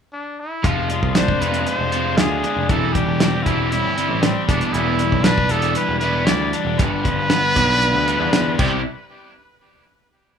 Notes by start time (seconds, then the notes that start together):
0.13 D4
0.40 E4
0.63 F1 F3 G#3 C4 F4, kick, closed hi-hat
0.89 F3 G#3, closed hi-hat
1.03 C2, kick
1.15 F3 G#3 D4 C5, snare, closed hi-hat
1.28 kick
1.40 F1 F3 G#3 C4 F4 B4, closed hi-hat
1.54 closed hi-hat
1.65 F3 G#3 C5, closed hi-hat
1.79 F1
1.91 F3 G#3 C4 F4, closed hi-hat
2.17 D2 F3 G#3 G#4, snare, closed hi-hat
2.43 F3 G#3 D4, closed hi-hat
2.56 F1
2.69 E1 E3 G3 C4 A4, kick, closed hi-hat
2.93 E3 G3 G4, kick, closed hi-hat
3.06 E1
3.20 E3 G3 C4, snare, closed hi-hat
3.43 E1 E3 E4 G4, kick, closed hi-hat
3.48 G3 C4
3.70 E3 G3 E4, closed hi-hat
3.84 G1
3.97 E3 G3 C4 G4, closed hi-hat
4.09 A1
4.23 E3 G3 C4, snare, closed hi-hat
4.48 E1 E3 G3 B3 D4, kick, snare, closed hi-hat
4.61 closed hi-hat
4.73 E1 E3 G3 B3 E4, closed hi-hat
4.99 E3 G3, closed hi-hat
5.12 B1, kick
5.24 E3 G3 D4 B4, snare, closed hi-hat
5.38 kick
5.49 E1 E3 G3 B3 E4 A4, closed hi-hat
5.62 closed hi-hat
5.75 E3 G3 B4, closed hi-hat
5.89 E1
5.99 E3 G3 E4 B4, closed hi-hat
6.04 B3
6.26 D2 E3 G3 D5, snare, closed hi-hat
6.53 E3 G3 D4, closed hi-hat
6.65 E1
6.78 G1 G2 D3 F3 B4, kick, closed hi-hat
7.04 G2 D3 F3, kick, closed hi-hat
7.16 G1
7.29 G2 D3 B3, snare, closed hi-hat
7.56 B1 G2 D3 F3 D4, kick, closed hi-hat
7.81 G2 D3 F3, closed hi-hat
7.94 D2
8.07 G2 D3 F3 D4, closed hi-hat
8.20 E2
8.31 E2 G2 D3 F3, snare, closed hi-hat
8.58 C2 C3 G3 C4 E4 G4, kick, crash